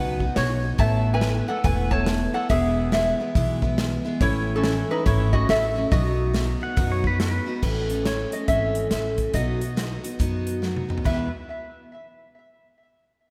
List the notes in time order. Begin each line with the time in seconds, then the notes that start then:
Already playing: C#2 B2 F#3 B3 D#4 F#4 B4 F#5
0.20 B3 D#4 F#4, kick
0.36 B1 F#4 C#5, snare, open hi-hat
0.62 B3 D#4 F#4
0.78 A1 A2 E3 A3 B3 E4 E5 A5, kick, open hi-hat
1.14 B4 G#5
1.21 E3 A3 B3 E4, snare, open hi-hat
1.48 A3 B3 E4 A4 F#5
1.64 E1 A2 E3 A3 B3 E4 B4 G#5, kick, open hi-hat
1.90 A3 B3 E4 C#5 A5, kick
2.06 snare, open hi-hat
2.34 A3 B3 E4 A4 F#5
2.49 E1 E2 B2 E3 G#3 B3 E4 G#4 E5, kick, open hi-hat
2.92 E3 G#3 B3 E4 G#4 E5, snare, open hi-hat
3.20 E3 G#3 B3 E4
3.35 B1 E2 B2 E3 G#3 B3 E4, kick, open hi-hat
3.62 E3 G#3 B3 E4, kick
3.78 snare, open hi-hat
4.05 E3 G#3 B3 E4
4.21 A1 A2 E3 A3 C#4 E4 C#5, kick, open hi-hat
4.56 C#4 A4
4.63 E3 A3 C#4 E4, snare, open hi-hat
4.91 D#4 B4
5.06 G#1 A2 E3 A3 C#4 E4 C#5, kick, open hi-hat
5.33 A3 C#4 E4 F#4 D#5, kick
5.49 A1 A4 E5, snare, open hi-hat
5.75 A3 C#4 E4
5.91 B1 B2 F#3 B3 D#4 F#4 D#5, kick, open hi-hat
6.33 F#3 B3 D#4 F#4, snare, open hi-hat
6.61 B3 D#4 F#4 F#5
6.77 F#2 B2 F#3 B3 D#4 F#4, kick, open hi-hat
6.92 C#5
7.04 B3 D#4 F#4 B4, kick
7.20 B4, snare, open hi-hat
7.46 B3 D#4 F#4
7.62 A1 A2 E3 A3 C#4 A4 B4, kick, crash
7.89 A3 C#4 A4, closed hi-hat
8.05 E3 A3 C#4 A4 C#5, snare, closed hi-hat
8.32 A3 C#4 A4 D#5, closed hi-hat
8.48 G#1 E3 A3 C#4 A4 E5, kick, closed hi-hat
8.75 closed hi-hat
8.91 A1 E3 A3 C#4 A4, snare, closed hi-hat
9.18 kick, closed hi-hat
9.34 B1 B2 F#3 B3 D#4 F#4 D#5, kick, closed hi-hat
9.61 B3 D#4 F#4, closed hi-hat
9.76 F#3 B3 D#4 F#4, snare, closed hi-hat
10.03 B3 D#4 F#4, closed hi-hat
10.19 F#2 B2 F#3 B3 D#4 F#4, kick, closed hi-hat
10.47 closed hi-hat
10.62 F#3 B3 D#4 F#4, snare
10.76 high tom
10.89 B3 D#4 F#4, mid tom
10.98 floor tom
11.04 E2 B2 E3 G#3 B3 E4 B4 E5, kick, crash